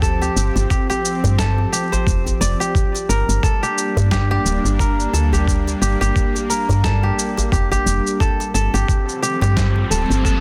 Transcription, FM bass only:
0, 0, Header, 1, 2, 480
1, 0, Start_track
1, 0, Key_signature, -2, "minor"
1, 0, Tempo, 681818
1, 15, Time_signature, 4, 2, 24, 8
1, 7324, End_track
2, 0, Start_track
2, 0, Title_t, "FM bass"
2, 0, Program_c, 0, 39
2, 0, Note_on_c, 0, 38, 80
2, 208, Note_off_c, 0, 38, 0
2, 254, Note_on_c, 0, 31, 95
2, 353, Note_off_c, 0, 31, 0
2, 391, Note_on_c, 0, 31, 98
2, 465, Note_off_c, 0, 31, 0
2, 871, Note_on_c, 0, 43, 94
2, 1167, Note_off_c, 0, 43, 0
2, 1454, Note_on_c, 0, 29, 85
2, 1636, Note_off_c, 0, 29, 0
2, 1694, Note_on_c, 0, 29, 96
2, 1793, Note_off_c, 0, 29, 0
2, 2175, Note_on_c, 0, 31, 92
2, 2273, Note_off_c, 0, 31, 0
2, 2312, Note_on_c, 0, 31, 92
2, 2386, Note_off_c, 0, 31, 0
2, 2792, Note_on_c, 0, 43, 91
2, 3088, Note_off_c, 0, 43, 0
2, 3133, Note_on_c, 0, 26, 78
2, 3232, Note_off_c, 0, 26, 0
2, 3271, Note_on_c, 0, 31, 100
2, 3567, Note_off_c, 0, 31, 0
2, 3614, Note_on_c, 0, 38, 83
2, 4048, Note_off_c, 0, 38, 0
2, 4093, Note_on_c, 0, 31, 96
2, 4192, Note_off_c, 0, 31, 0
2, 4231, Note_on_c, 0, 31, 96
2, 4305, Note_off_c, 0, 31, 0
2, 4710, Note_on_c, 0, 43, 91
2, 5007, Note_off_c, 0, 43, 0
2, 5295, Note_on_c, 0, 29, 87
2, 5477, Note_off_c, 0, 29, 0
2, 5533, Note_on_c, 0, 29, 96
2, 5632, Note_off_c, 0, 29, 0
2, 6014, Note_on_c, 0, 31, 90
2, 6113, Note_off_c, 0, 31, 0
2, 6151, Note_on_c, 0, 31, 93
2, 6225, Note_off_c, 0, 31, 0
2, 6629, Note_on_c, 0, 43, 91
2, 6927, Note_off_c, 0, 43, 0
2, 6973, Note_on_c, 0, 26, 79
2, 7072, Note_off_c, 0, 26, 0
2, 7110, Note_on_c, 0, 31, 97
2, 7324, Note_off_c, 0, 31, 0
2, 7324, End_track
0, 0, End_of_file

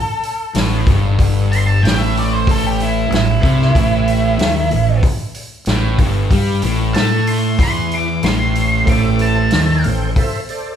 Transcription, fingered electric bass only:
0, 0, Header, 1, 2, 480
1, 0, Start_track
1, 0, Key_signature, 0, "minor"
1, 0, Tempo, 641711
1, 893, Time_signature, 4, 2, 24, 8
1, 8049, End_track
2, 0, Start_track
2, 0, Title_t, "Fingered electric bass"
2, 0, Program_c, 0, 33
2, 415, Note_on_c, 0, 33, 95
2, 637, Note_off_c, 0, 33, 0
2, 654, Note_on_c, 0, 31, 83
2, 1343, Note_off_c, 0, 31, 0
2, 1368, Note_on_c, 0, 33, 82
2, 2300, Note_off_c, 0, 33, 0
2, 2319, Note_on_c, 0, 33, 82
2, 2548, Note_off_c, 0, 33, 0
2, 2572, Note_on_c, 0, 36, 88
2, 2795, Note_off_c, 0, 36, 0
2, 2808, Note_on_c, 0, 33, 84
2, 3260, Note_off_c, 0, 33, 0
2, 3292, Note_on_c, 0, 39, 85
2, 3515, Note_off_c, 0, 39, 0
2, 3536, Note_on_c, 0, 33, 80
2, 3757, Note_off_c, 0, 33, 0
2, 4241, Note_on_c, 0, 33, 91
2, 4469, Note_off_c, 0, 33, 0
2, 4481, Note_on_c, 0, 31, 89
2, 4709, Note_off_c, 0, 31, 0
2, 4723, Note_on_c, 0, 43, 82
2, 4950, Note_off_c, 0, 43, 0
2, 4962, Note_on_c, 0, 33, 87
2, 5190, Note_off_c, 0, 33, 0
2, 5200, Note_on_c, 0, 45, 90
2, 5656, Note_off_c, 0, 45, 0
2, 5678, Note_on_c, 0, 40, 85
2, 6135, Note_off_c, 0, 40, 0
2, 6162, Note_on_c, 0, 33, 90
2, 6617, Note_off_c, 0, 33, 0
2, 6638, Note_on_c, 0, 33, 81
2, 7096, Note_off_c, 0, 33, 0
2, 7130, Note_on_c, 0, 39, 89
2, 7355, Note_off_c, 0, 39, 0
2, 7375, Note_on_c, 0, 33, 74
2, 7598, Note_off_c, 0, 33, 0
2, 8049, End_track
0, 0, End_of_file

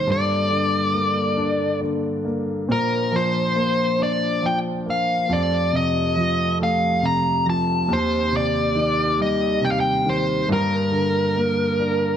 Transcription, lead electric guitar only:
0, 0, Header, 1, 2, 480
1, 0, Start_track
1, 0, Key_signature, -2, "major"
1, 0, Tempo, 870827
1, 45, Time_signature, 6, 3, 24, 8
1, 2926, Tempo, 863309
1, 6740, End_track
2, 0, Start_track
2, 0, Title_t, "Lead electric guitar"
2, 0, Program_c, 0, 29
2, 0, Note_on_c, 0, 72, 68
2, 62, Note_off_c, 0, 72, 0
2, 64, Note_on_c, 0, 74, 63
2, 992, Note_off_c, 0, 74, 0
2, 1498, Note_on_c, 0, 70, 57
2, 1740, Note_off_c, 0, 70, 0
2, 1741, Note_on_c, 0, 72, 55
2, 2220, Note_off_c, 0, 72, 0
2, 2222, Note_on_c, 0, 74, 63
2, 2458, Note_on_c, 0, 79, 65
2, 2462, Note_off_c, 0, 74, 0
2, 2522, Note_off_c, 0, 79, 0
2, 2703, Note_on_c, 0, 77, 67
2, 2937, Note_on_c, 0, 74, 72
2, 2941, Note_off_c, 0, 77, 0
2, 3177, Note_off_c, 0, 74, 0
2, 3179, Note_on_c, 0, 75, 69
2, 3629, Note_off_c, 0, 75, 0
2, 3662, Note_on_c, 0, 77, 72
2, 3898, Note_on_c, 0, 82, 75
2, 3900, Note_off_c, 0, 77, 0
2, 4114, Note_off_c, 0, 82, 0
2, 4143, Note_on_c, 0, 81, 71
2, 4380, Note_off_c, 0, 81, 0
2, 4384, Note_on_c, 0, 72, 79
2, 4620, Note_off_c, 0, 72, 0
2, 4626, Note_on_c, 0, 74, 73
2, 5099, Note_off_c, 0, 74, 0
2, 5101, Note_on_c, 0, 75, 73
2, 5338, Note_on_c, 0, 79, 66
2, 5339, Note_off_c, 0, 75, 0
2, 5370, Note_off_c, 0, 79, 0
2, 5375, Note_on_c, 0, 77, 57
2, 5407, Note_off_c, 0, 77, 0
2, 5425, Note_on_c, 0, 79, 68
2, 5580, Note_off_c, 0, 79, 0
2, 5586, Note_on_c, 0, 72, 60
2, 5799, Note_off_c, 0, 72, 0
2, 5829, Note_on_c, 0, 70, 65
2, 6740, Note_off_c, 0, 70, 0
2, 6740, End_track
0, 0, End_of_file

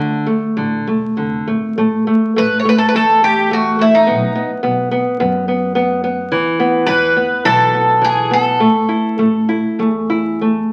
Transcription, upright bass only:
0, 0, Header, 1, 2, 480
1, 0, Start_track
1, 0, Tempo, 599401
1, 1425, Time_signature, 4, 2, 24, 8
1, 1897, Tempo, 566038
1, 7177, Tempo, 593472
1, 8137, Tempo, 630252
1, 8856, End_track
2, 0, Start_track
2, 0, Title_t, "Upright bass"
2, 0, Program_c, 0, 32
2, 0, Note_on_c, 0, 38, 79
2, 286, Note_off_c, 0, 38, 0
2, 453, Note_on_c, 0, 33, 91
2, 611, Note_off_c, 0, 33, 0
2, 698, Note_on_c, 0, 28, 69
2, 918, Note_off_c, 0, 28, 0
2, 944, Note_on_c, 0, 29, 64
2, 1162, Note_off_c, 0, 29, 0
2, 1180, Note_on_c, 0, 32, 70
2, 1398, Note_off_c, 0, 32, 0
2, 1422, Note_on_c, 0, 33, 74
2, 1577, Note_off_c, 0, 33, 0
2, 1900, Note_on_c, 0, 33, 79
2, 2216, Note_off_c, 0, 33, 0
2, 2386, Note_on_c, 0, 40, 93
2, 3346, Note_on_c, 0, 35, 87
2, 3359, Note_off_c, 0, 40, 0
2, 3498, Note_off_c, 0, 35, 0
2, 3819, Note_on_c, 0, 35, 82
2, 4127, Note_off_c, 0, 35, 0
2, 4298, Note_on_c, 0, 42, 103
2, 5243, Note_off_c, 0, 42, 0
2, 5243, Note_on_c, 0, 40, 105
2, 5397, Note_off_c, 0, 40, 0
2, 5722, Note_on_c, 0, 40, 91
2, 6035, Note_off_c, 0, 40, 0
2, 6210, Note_on_c, 0, 35, 109
2, 7184, Note_off_c, 0, 35, 0
2, 7184, Note_on_c, 0, 33, 91
2, 7336, Note_off_c, 0, 33, 0
2, 7655, Note_on_c, 0, 33, 82
2, 7970, Note_off_c, 0, 33, 0
2, 8142, Note_on_c, 0, 40, 84
2, 8762, Note_off_c, 0, 40, 0
2, 8856, End_track
0, 0, End_of_file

